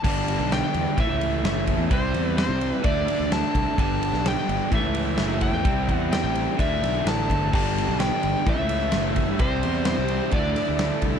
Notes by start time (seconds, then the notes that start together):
0.01 G1 G2 D3 G3 G4 A4 B4 D5 A5, kick, crash
0.05 B3 D4
0.27 G3 B3 D4, ride
0.39 B1
0.50 D3 G3 B3 D4 G5, snare, ride
0.74 E2, ride
0.96 A1 A2 E3 A3 C#4 E4 A4 C#5 E5, kick, ride
1.00 E5
1.10 C#2
1.21 A3 C#4 E4, ride
1.43 F#1 A2 E3 A3 C#4 E4, snare, ride
1.67 A3 C#4 E4, kick, ride
1.78 E2
1.90 C2 C3 G3 C4 E4 G4 C5 E5, kick, ride
2.14 E2 G3 C4 E4, ride
2.37 C3 G3 C4 E4 C5, snare, ride
2.49 C2
2.61 ride
2.73 B4
2.82 D2 D3 E3 A3 D4 E4 D5, kick, ride
2.86 A4 D5 E5
3.06 E3 A3 D4, ride
3.20 D2
3.30 D3 E3 A3 D4 A5, snare, ride
3.54 C2 E3 A3 D4, kick, ride
3.76 G1 G2 D3 G3 B3 D4 G4 A4 B4 D5 A5, kick, ride
4.00 G3 B3 D4, ride
4.13 B1, snare
4.25 D3 G3 B3 D4 G5, snare, ride
4.49 G1, ride
4.68 A2 E3 E4 A4 C#5 E5, kick
4.72 A1 A3 C#4 E4 E5, ride
4.83 C#2
4.94 A3 C#4 E4, ride
5.17 F#1 A2 E3 A3 C#4 E4, snare, ride
5.40 A3 C#4 E4 G5, kick, ride
5.53 E2
5.63 C2 C3 G3 C4 E4 G4 C5 E5, kick, ride
5.87 E2 G3 C4 E4, kick, ride
5.92 F#5
6.12 C3 G3 C4 E4 G5, snare, ride
6.24 A1
6.35 ride
6.58 D2 D3 E3 A3 D4 E4 F4 A#4 D#5 E5 F5, kick, ride
6.77 E4 A4 D5 E5
6.81 B1 E3 A3, snare, ride
7.04 A1 D3 E3 A3 E4 A5, snare, ride
7.28 G1 E3 A3 E4, kick, ride
7.52 G1 G2 D3 G3 B3 D4 G4 A4 B4 D5 A5, kick, crash
7.76 G3 B3 D4, snare, ride
7.88 B1
7.98 D3 G3 B3 D4 G5, snare, ride
8.23 G1, ride
8.46 A1 A2 E3 A3 C#4 E4 A4 C#5 E5, kick, ride
8.58 C#2
8.69 A3 C#4 E4, ride
8.92 F#1 A2 E3 A3 C#4 E4, snare, ride
9.16 A3 C#4 E4, kick, ride
9.29 G2
9.39 C2 C3 G3 C4 E4 G4 C5 E5, kick, ride
9.63 E2 G3 C4 E4, ride
9.85 C3 G3 C4 C5, snare, ride
9.89 E4
9.98 C2
10.08 ride
10.31 D2 D3 E3 D4 E4 A4 D5 E5, kick, ride
10.35 A3 E4
10.56 E3 A3 E4, snare, ride
10.69 D2
10.79 D3 E3 A3 E4, snare, ride
11.02 C2 A3 E4, kick, ride
11.06 E3